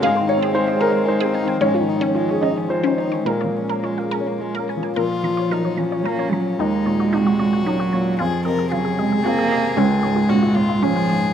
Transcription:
<<
  \new Staff \with { instrumentName = "Synth pluck" } { \time 3/4 \key bes \minor \tempo 4 = 111 aes'16 c''16 r16 aes'16 c''16 ees''16 aes'16 r8 aes'16 aes''16 aes''16 | des'16 f'16 r16 des'16 f'16 aes'16 des'16 r8 des'16 des''16 des''16 | bes'16 des''16 r16 bes'16 des''16 f''16 bes'16 r8 bes'16 aes''16 aes''16 | bes'16 r16 bes''16 des''16 bes'16 des''16 bes''16 des''16 bes'16 des''16 bes''16 r16 |
ees'16 r16 des''16 ges'16 ees'16 ges'16 des''16 ges'16 ees'16 ges'16 des''16 r16 | f'16 r16 ees''16 aes'16 f'16 aes'16 ees''16 aes'16 f'16 aes'16 ees''16 r16 | des'16 r16 des''16 f'16 des'16 f'16 des''16 f'16 des'16 f'16 des''16 r16 | }
  \new Staff \with { instrumentName = "Violin" } { \time 3/4 \key bes \minor aes16 c'16 ees'16 c'16 aes16 c'16 ees'16 c'16 aes16 c'16 ees'16 c'16 | aes16 des'16 ees'16 des'16 aes16 des'16 ees'16 des'16 aes16 des'16 ees'16 des'16 | aes16 bes16 des'16 bes16 aes16 bes16 des'16 bes16 aes16 bes16 des'16 bes16 | f'4 ees'8 des'4. |
ees'4 ges'2 | aes'8 bes'8 aes'2~ | aes'4 ges'8 f'8 aes'4 | }
  \new Staff \with { instrumentName = "Felt piano" } { \time 3/4 \key bes \minor f''8 des''8 c''8 bes'8 c''4 | des''4. ees''8 c''4 | bes'2 r4 | r2. |
r2. | r2. | r2. | }
  \new Staff \with { instrumentName = "Felt piano" } { \clef bass \time 3/4 \key bes \minor \tuplet 3/2 { aes,8 ees8 c'8 ees'8 aes'8 c''8 ees'8 c'8 ees8 } | \tuplet 3/2 { aes,8 ees8 ees'8 f'8 aes'8 ees''8 f'8 ees'8 ees8 } | \tuplet 3/2 { bes,8 f8 des'8 f'8 aes'8 des''8 f'8 des'8 f8 } | bes,8 f8 ges8 f8 des'8 f8 |
ees,8 bes,8 c8 bes,8 des'8 bes,8 | f,8 c8 des8 c8 c'8 c8 | des,8 aes,8 bes,8 aes,8 des'8 aes,8 | }
  \new Staff \with { instrumentName = "Cello" } { \clef bass \time 3/4 \key bes \minor aes2. | f2. | aes2~ aes8 r8 | f2 bes8 ges8 |
aes2 ges4 | f4 ges8 aes8 bes4 | aes2 f4 | }
>>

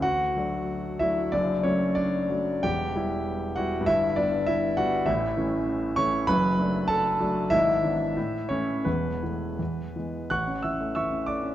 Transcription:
<<
  \new Staff \with { instrumentName = "Grand piano" } { \time 2/4 \key d \major \tempo 4 = 94 <fis' fis''>4. <e' e''>8 | <d' d''>8 <cis' cis''>8 <d' d''>4 | <g' g''>4. <fis' fis''>8 | <e' e''>8 <d' d''>8 <e' e''>8 <fis' fis''>8 |
\key a \major <e' e''>4. <cis'' cis'''>8 | <b' b''>4 <a' a''>8 r8 | <e' e''>4. <cis' cis''>8 | <b b'>4. r8 |
<fis'' cis''' fis'''>8 <e'' e'''>8 <e'' cis''' e'''>8 <d'' d'''>8 | }
  \new Staff \with { instrumentName = "Grand piano" } { \clef bass \time 2/4 \key d \major d,8 <fis a d'>4 <fis a d'>8 | <fis,, fis,>8 <fis a d'>4 <fis a d'>8 | <e,, e,>8 <g b e'>4 <g b e'>8 | <g,, g,>8 <g b e'>4 <g b e'>8 |
\key a \major <a,, a,>8 <e a cis'>4 <e a cis'>8 | <fis,, fis,>8 <fis a d'>4 <fis a d'>8 | <gis,, gis,>8 <e b d'>8 a,8 <e a>8 | <e,, e,>8 <e a b>8 e,8 <e gis b>8 |
a,,16 cis'16 e16 a16 e16 cis'16 a16 cis'16 | }
>>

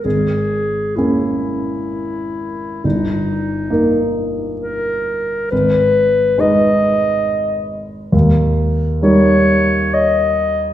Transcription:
<<
  \new Staff \with { instrumentName = "Clarinet" } { \time 3/4 \key dis \phrygian \tempo 4 = 67 gis'4 e'2 | dis'4. r8 ais'4 | b'4 dis''4. r8 | r4 cis''4 dis''4 | }
  \new Staff \with { instrumentName = "Grand piano" } { \time 3/4 \key dis \phrygian gis,,4 <ais cis' ais'>2 | g,,4 <ais dis' ais'>2 | gis,,4 <gis dis' b'>2 | dis,4 <g dis' ais'>2 | }
>>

